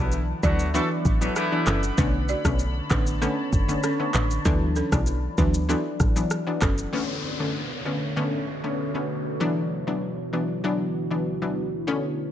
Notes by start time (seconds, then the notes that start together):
Already playing: B1 E3 F#3 A3 B3 E4 D5 F#5 B5
0.00 D4
0.12 shaker
0.43 D2 E3 F#3 A3 B3 D4 F#4 D5, kick, shaker
0.59 shaker
0.74 E3 F#3 A3 B3 D4 E4 F#4 A4 B4, shaker
1.05 A1, kick, shaker
1.21 E3 F#3 A3 B3 D4 F#4, shaker
1.36 E3 A3 B3 E4, cross-stick, shaker
1.52 E3 F#3 B3 D4
1.66 F#1 C#4 A4, cross-stick, clap, shaker
1.83 shaker
1.98 B1 D3 A3 B3 C#4 D4 B4 C#5 A5, kick, shaker
2.29 F#4 D5, shaker
2.45 B1 D3 A3 B3 C#4, kick, cross-stick, shaker
2.59 shaker
2.90 A1 D3 A3 B3 C#4 D4 B4, kick, cross-stick, clap, shaker
3.07 shaker
3.21 D3 A3 B3 C#4 A4, shaker
3.53 F#1, kick, shaker
3.68 D3 A3 B3 C#4, shaker
3.83 C#4 A4, cross-stick, shaker
3.99 D3 A3 B3 C#4
4.14 A1 D4 B4, clap, shaker
4.31 shaker
4.45 D2 E3 F#3 B3 D4 E4 A4 D5 F#5, kick, shaker
4.76 C#4 A4, shaker
4.92 B1 E3 F#3 B3 D4, kick, cross-stick, shaker
5.06 shaker
5.38 D2 E3 F#3 B3 D4 B4, kick, shaker
5.54 shaker
5.69 E3 F#3 B3 D4 A4, shaker
6.00 A1, kick, cross-stick, shaker
6.16 E3 F#3 B3 D4, shaker
6.31 cross-stick, shaker
6.47 E3 F#3 B3 D4
6.61 F#1 C#4 A4, kick, cross-stick, clap, shaker
6.78 shaker
6.93 B2 D3 A3 B3 C#4 C#5, downlifter
7.39 D3 A3 B3 C#4
7.85 D3 A3 B3 C#4
8.16 D3 A3 B3 C#4
8.64 D3 A3 B3 C#4
8.94 D3 A3 B3 C#4
9.40 D2 E3 F#3 B3 D4 E4 F#4
9.87 E3 F#3 B3 D4
10.33 E3 F#3 B3 D4
10.64 E3 F#3 B3 D4
11.11 E3 F#3 B3 D4
11.42 E3 F#3 B3 D4
11.87 D3 A3 B3 C#4